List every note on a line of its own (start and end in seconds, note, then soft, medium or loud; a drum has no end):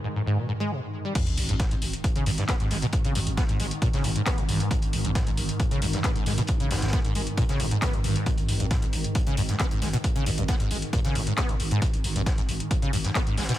0.00 1.14 G#2 medium
0.00 1.14 D#3 medium
0.04 0.08 G#2 medium
0.16 0.22 G#2 medium
0.26 0.39 G#2 loud
0.38 0.47 B2 medium
0.49 0.52 G#2 medium
0.60 0.72 G#3 loud
0.71 0.80 B2 loud
1.05 1.13 G3 medium
1.15 13.59 G#2 medium
1.15 1.19 G#2 medium
1.15 13.59 D#3 medium
1.15 kick loud
1.15 closed hi-hat loud
1.15 closed hi-hat medium
1.15 crash loud
1.15 sub drop medium
1.27 1.37 G#1 medium
1.27 closed hi-hat soft
1.27 closed hi-hat medium
1.37 1.48 G#1 loud
1.37 closed hi-hat medium
1.37 open hi-hat loud
1.49 1.59 G#1 medium
1.49 1.55 G2 medium
1.49 closed hi-hat medium
1.59 kick loud
1.59 snare loud
1.59 closed hi-hat medium
1.59 closed hi-hat loud
1.71 1.81 G#1 medium
1.71 1.75 G#2 medium
1.71 closed hi-hat medium
1.82 1.93 G#1 loud
1.82 closed hi-hat medium
1.82 open hi-hat medium
1.93 closed hi-hat medium
2.04 kick loud
2.04 closed hi-hat medium
2.16 2.26 G#1 medium
2.16 2.25 C#3 loud
2.16 closed hi-hat medium
2.26 2.38 G#1 loud
2.26 2.30 G2 loud
2.26 closed hi-hat medium
2.26 open hi-hat loud
2.38 2.44 G2 medium
2.38 snare soft
2.38 closed hi-hat medium
2.48 2.55 B3 loud
2.48 kick loud
2.48 snare loud
2.48 clap loud
2.48 closed hi-hat loud
2.48 closed hi-hat medium
2.60 2.70 G#1 medium
2.60 2.69 G#2 medium
2.60 closed hi-hat medium
2.70 2.82 G#1 loud
2.70 2.77 G#3 medium
2.70 snare medium
2.70 closed hi-hat medium
2.70 open hi-hat medium
2.82 2.86 B2 loud
2.82 closed hi-hat medium
2.82 closed hi-hat soft
2.92 kick loud
2.92 closed hi-hat medium
2.92 closed hi-hat loud
3.04 3.15 G#1 medium
3.04 3.13 C#3 loud
3.04 closed hi-hat medium
3.15 3.26 G#1 loud
3.15 3.19 G2 loud
3.15 closed hi-hat medium
3.15 open hi-hat loud
3.27 3.37 G#1 medium
3.27 closed hi-hat medium
3.37 3.44 B3 loud
3.37 kick loud
3.37 snare loud
3.37 closed hi-hat loud
3.37 closed hi-hat medium
3.49 3.59 G#1 medium
3.49 3.58 G#2 medium
3.49 closed hi-hat medium
3.60 3.71 G#1 loud
3.60 3.66 G#3 medium
3.60 closed hi-hat medium
3.60 open hi-hat medium
3.71 closed hi-hat medium
3.82 3.88 A#2 loud
3.82 kick loud
3.82 closed hi-hat medium
3.93 4.03 G#1 medium
3.93 4.06 C#3 loud
3.93 snare medium
3.93 closed hi-hat medium
4.04 4.15 G#1 loud
4.04 4.11 G#2 medium
4.04 closed hi-hat medium
4.04 open hi-hat loud
4.16 4.22 G#2 medium
4.16 closed hi-hat medium
4.26 4.40 B3 loud
4.26 kick loud
4.26 snare loud
4.26 clap loud
4.26 closed hi-hat medium
4.26 closed hi-hat loud
4.38 4.48 G#1 medium
4.38 4.44 G#2 medium
4.38 closed hi-hat medium
4.49 4.60 G#1 loud
4.49 4.62 G2 medium
4.49 closed hi-hat medium
4.49 open hi-hat loud
4.60 4.69 G#2 loud
4.60 closed hi-hat medium
4.71 4.75 G#2 medium
4.71 kick loud
4.71 closed hi-hat medium
4.71 closed hi-hat loud
4.82 4.92 G#1 medium
4.82 closed hi-hat soft
4.82 closed hi-hat medium
4.93 5.04 G#1 loud
4.93 closed hi-hat medium
4.93 open hi-hat loud
5.05 5.15 G#1 medium
5.05 5.11 G2 medium
5.05 closed hi-hat medium
5.15 kick loud
5.15 snare loud
5.15 closed hi-hat loud
5.15 closed hi-hat medium
5.27 5.37 G#1 medium
5.27 5.30 G#2 medium
5.27 closed hi-hat medium
5.37 5.49 G#1 loud
5.37 closed hi-hat medium
5.37 open hi-hat loud
5.49 closed hi-hat medium
5.59 kick loud
5.59 closed hi-hat medium
5.71 5.81 G#1 medium
5.71 5.80 C#3 loud
5.71 closed hi-hat medium
5.82 5.93 G#1 loud
5.82 5.86 G2 loud
5.82 closed hi-hat medium
5.82 open hi-hat loud
5.93 5.99 G2 medium
5.93 snare soft
5.93 closed hi-hat medium
6.03 6.11 B3 loud
6.03 kick loud
6.03 snare loud
6.03 clap loud
6.03 closed hi-hat medium
6.03 closed hi-hat loud
6.16 6.26 G#1 medium
6.16 6.25 G#2 medium
6.16 closed hi-hat medium
6.26 6.38 G#1 loud
6.26 6.33 G#3 medium
6.26 snare medium
6.26 closed hi-hat medium
6.26 open hi-hat loud
6.37 6.42 B2 loud
6.37 closed hi-hat soft
6.37 closed hi-hat medium
6.47 kick loud
6.47 closed hi-hat medium
6.60 6.70 G#1 medium
6.60 6.69 C#3 loud
6.60 closed hi-hat medium
6.71 6.82 G#1 loud
6.71 6.75 G2 loud
6.71 snare loud
6.71 closed hi-hat medium
6.71 open hi-hat loud
6.76 snare medium
6.76 closed hi-hat medium
6.82 6.93 G#1 medium
6.82 snare loud
6.82 closed hi-hat medium
6.87 snare medium
6.87 closed hi-hat medium
6.93 6.99 B3 loud
6.93 kick loud
6.93 snare loud
6.93 closed hi-hat medium
7.05 7.15 G#1 medium
7.05 7.13 G#2 medium
7.05 closed hi-hat medium
7.15 7.27 G#1 loud
7.15 7.22 G#3 medium
7.15 open hi-hat medium
7.27 closed hi-hat medium
7.38 7.44 A#2 loud
7.38 kick loud
7.38 closed hi-hat medium
7.49 7.59 G#1 medium
7.49 7.61 C#3 loud
7.49 snare medium
7.49 closed hi-hat medium
7.60 7.71 G#1 loud
7.60 7.66 G#2 medium
7.60 closed hi-hat medium
7.60 open hi-hat loud
7.71 7.77 G#2 medium
7.71 closed hi-hat medium
7.82 7.95 B3 loud
7.82 kick loud
7.82 snare loud
7.82 clap loud
7.82 closed hi-hat medium
7.82 closed hi-hat loud
7.93 8.04 G#1 medium
7.93 7.99 G#2 medium
7.93 closed hi-hat medium
8.04 8.16 G#1 loud
8.04 8.17 G2 medium
8.04 closed hi-hat medium
8.04 open hi-hat loud
8.16 8.24 G#2 loud
8.16 closed hi-hat medium
8.26 8.30 G#2 medium
8.26 kick loud
8.26 closed hi-hat medium
8.37 8.48 G#1 medium
8.37 closed hi-hat soft
8.37 closed hi-hat medium
8.49 8.60 G#1 loud
8.49 closed hi-hat medium
8.49 open hi-hat loud
8.60 8.71 G#1 medium
8.60 8.66 G2 medium
8.60 closed hi-hat medium
8.71 kick loud
8.71 snare loud
8.71 closed hi-hat medium
8.82 8.93 G#1 medium
8.82 8.86 G#2 medium
8.82 closed hi-hat medium
8.93 9.04 G#1 loud
8.93 closed hi-hat medium
8.93 open hi-hat medium
9.04 closed hi-hat medium
9.15 kick loud
9.15 closed hi-hat medium
9.27 9.37 G#1 medium
9.27 9.36 C#3 loud
9.27 closed hi-hat medium
9.37 9.49 G#1 loud
9.37 9.41 G2 loud
9.37 closed hi-hat medium
9.37 open hi-hat loud
9.49 9.55 G2 medium
9.49 snare soft
9.49 closed hi-hat medium
9.59 9.66 B3 loud
9.59 kick loud
9.59 snare loud
9.59 clap loud
9.59 closed hi-hat medium
9.71 9.81 G#1 medium
9.71 9.80 G#2 medium
9.71 closed hi-hat medium
9.81 9.93 G#1 loud
9.81 9.88 G#3 medium
9.81 snare medium
9.81 closed hi-hat medium
9.81 open hi-hat medium
9.93 9.97 B2 loud
9.93 closed hi-hat medium
9.93 closed hi-hat soft
10.04 kick loud
10.04 closed hi-hat medium
10.16 10.26 G#1 medium
10.16 10.24 C#3 loud
10.16 closed hi-hat medium
10.26 10.37 G#1 loud
10.26 10.30 G2 loud
10.26 closed hi-hat medium
10.26 open hi-hat loud
10.38 10.48 G#1 medium
10.38 10.44 G2 medium
10.38 closed hi-hat medium
10.48 10.55 B3 loud
10.48 kick loud
10.48 snare loud
10.48 closed hi-hat medium
10.60 10.70 G#1 medium
10.60 10.69 G#2 medium
10.60 closed hi-hat medium
10.70 10.82 G#1 loud
10.70 10.77 G#3 medium
10.70 closed hi-hat medium
10.70 open hi-hat medium
10.82 closed hi-hat medium
10.93 10.99 A#2 loud
10.93 kick loud
10.93 closed hi-hat medium
11.04 11.15 G#1 medium
11.04 11.17 C#3 loud
11.04 snare medium
11.04 closed hi-hat medium
11.15 11.27 G#1 loud
11.15 11.22 G#2 medium
11.15 closed hi-hat medium
11.15 open hi-hat loud
11.27 11.33 G#2 medium
11.27 closed hi-hat medium
11.37 11.50 B3 loud
11.37 kick loud
11.37 snare loud
11.37 clap loud
11.37 closed hi-hat medium
11.49 11.59 G#1 medium
11.49 11.55 G#2 medium
11.49 closed hi-hat medium
11.60 11.71 G#1 loud
11.60 closed hi-hat medium
11.60 open hi-hat medium
11.71 11.80 G#2 loud
11.71 closed hi-hat medium
11.82 kick loud
11.82 closed hi-hat loud
11.82 closed hi-hat medium
11.93 12.04 G#1 medium
11.93 closed hi-hat medium
11.93 closed hi-hat soft
12.04 12.15 G#1 loud
12.04 closed hi-hat medium
12.04 open hi-hat loud
12.16 12.26 G#1 medium
12.16 12.22 G2 medium
12.16 closed hi-hat medium
12.26 kick loud
12.26 snare loud
12.26 closed hi-hat medium
12.38 12.48 G#1 medium
12.38 12.41 G#2 medium
12.38 closed hi-hat medium
12.48 12.60 G#1 loud
12.48 closed hi-hat medium
12.48 open hi-hat medium
12.60 closed hi-hat medium
12.71 kick loud
12.71 closed hi-hat medium
12.82 12.92 G#1 medium
12.82 12.91 C#3 loud
12.82 closed hi-hat medium
12.93 13.04 G#1 loud
12.93 12.97 G2 loud
12.93 closed hi-hat medium
12.93 open hi-hat loud
13.04 13.10 G2 medium
13.04 snare soft
13.04 closed hi-hat medium
13.15 13.22 B3 loud
13.15 kick loud
13.15 snare loud
13.15 clap loud
13.15 closed hi-hat medium
13.27 13.37 G#1 medium
13.27 13.36 G#2 medium
13.27 closed hi-hat medium
13.37 13.49 G#1 loud
13.37 13.44 G#3 medium
13.37 snare medium
13.37 closed hi-hat medium
13.37 open hi-hat medium
13.43 snare medium
13.43 closed hi-hat medium
13.48 13.53 B2 loud
13.48 snare medium
13.48 closed hi-hat medium
13.54 snare medium
13.54 closed hi-hat medium